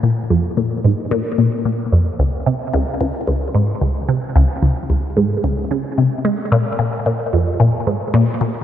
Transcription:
\new Staff \with { instrumentName = "Synth arpeggio sound" } { \clef bass \time 4/4 \key bes \minor \tempo 4 = 111 bes,8 f,8 bes,8 aes,8 bes,8 bes,8 bes,8 f,8 | des,8 c8 des,8 des,8 des,8 aes,8 des,8 c8 | des,8 des,8 des,8 aes,8 des,8 des8 c8 aes8 | bes,8 bes,8 bes,8 f,8 bes,8 aes,8 bes,8 bes,8 | }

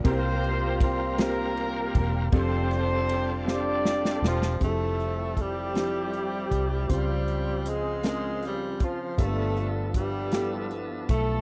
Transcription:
<<
  \new Staff \with { instrumentName = "Grand piano" } { \time 6/8 \key f \major \tempo 4. = 52 <bes c' e' f' g' bes'>4 r8 <bes c' f' g' c''>4 r8 | <c' d' f' g' a'>4 r8 <c' d' f' g' c''>4 r8 | <f c' e' g' aes' a'>4 r8 <f c' e' g' c''>4 r8 | <c' f' c''>4 r8 <c' des' f' bes' aes''>4 r8 |
<bes b f' g' a' e''>4 r8 <b e' f' g' a'>4 r8 | }
  \new Staff \with { instrumentName = "Grand piano" } { \clef bass \time 6/8 \key f \major c4. r4. | r2. | r2. | des4. r4. |
g,4. r4. | }
  \new Staff \with { instrumentName = "Horn section" } { \time 6/8 \key f \major << { <c' c''>4 <c' c''>8 <bes bes'>4 <bes bes'>8 | <c' c''>8 <c' c''>4 <d' d''>4 <f f'>8 | <a a'>4 <g g'>2 | <g g'>4 <aes aes'>8 <aes aes'>8 r8 <f f'>8 |
<a a'>4 <g g'>4 r8 <a a'>8 | } \\ { <f' g'>4. <f' g'>4. | <g' a'>8 <g' a'>4 <g' a'>4. | <c' e'>4 <c' e'>2 | c'4. r4. |
<d' f'>4 <b d'>4. r8 | } >> }
  \new Staff \with { instrumentName = "Tonewheel organ" } { \time 6/8 \key f \major <g bes c' f' bes'>2. | <g c' d' f' aes' a'>2. | <f g e' g' a'>2. | <des f f' c''>2. |
<f b a' e''>2. | }
  \new Staff \with { instrumentName = "Tenor saxophone" } { \clef bass \time 6/8 \key f \major r2. | r2 r8 f8 | a4 g2 | g4 aes8 aes8 g8 f8 |
a8 r8 g4 r8 a8 | }
  \new Staff \with { instrumentName = "Fingered electric bass" } { \clef bass \time 6/8 \key f \major c,2~ c,8 e,,8 | f,,2~ f,,8 e,,8 | f,,2~ f,,8 c,8 | des,2~ des,8 ges,,8 |
g,,2~ g,,8 b,,8 | }
  \new DrumStaff \with { instrumentName = "Drums" } \drummode { \time 6/8 <bd cymr>8 cymr8 <bd cymr>8 <cymr sn>8 cymr8 <bd cymr>8 | <bd cymr>8 <cymr sn>8 cymr8 sn8 sn16 sn16 sn16 sn16 | <hh bd>8 hh8 <hh bd>8 <hh sn>8 hh8 <hh bd>8 | <hh bd>8 hh8 hh8 <hh sn>8 <hh sn>8 <hh bd>8 |
<hh bd>8 hh8 <hh bd>8 <hh sn>8 hh8 <hh bd>8 | }
>>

